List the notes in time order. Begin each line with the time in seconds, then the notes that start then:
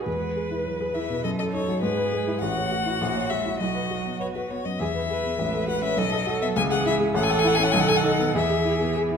0.06 E2 G#3 B4
0.21 B4
0.36 G#4
0.51 E4
0.65 F#3 B4
0.81 G#4
0.95 E3 E4 E5
1.10 B2
1.24 F#2 F#3 A4 D#5
1.39 A4 D#5
1.53 D#4 C#5
1.68 F#3
1.82 G#2 G#3 G#4 B4
1.97 B4
2.12 G#4
2.27 E4
2.41 A1 A3 F#4 F#5
2.57 C#5
2.71 F#4
2.86 E4
3.00 A#1 A#3
3.16 C#5
3.30 G#3 F#4 E5
3.46 E4
3.60 B1 F#3 F#4 D#5
3.75 B4
3.91 F#4
4.06 B3
4.20 B4 C#5
4.36 F#4 B4
4.50 B3 C#5
4.65 F#2 D#5
4.80 E2 E3 G#4 E5
4.95 B4
5.09 G#4 B4
5.25 B3
5.39 A1 G#3 B4
5.53 A4
5.68 F#4 F#5
5.82 C#4 E5
5.97 B1 F#3 A4 D#5
6.12 A4
6.27 F#4
6.42 B3 E5
6.56 C#2 E3 G#4 G#5
6.71 G#4 F#5
6.85 E4 E5
7.00 G#3
7.14 A1 E3 A4 F#5
7.23 G#5
7.29 A4 F#5
7.39 G#5
7.44 E4 F#5
7.55 C#4 G#5
7.64 F#5
7.72 B1 D#3 A4 G#5
7.80 F#5
7.89 A4 G#5
7.97 F#5
8.04 D#4
8.19 B3
8.34 E2 E3 G#4 E5
8.50 G#4
8.65 E4
8.81 B3
8.96 G#4
9.11 E4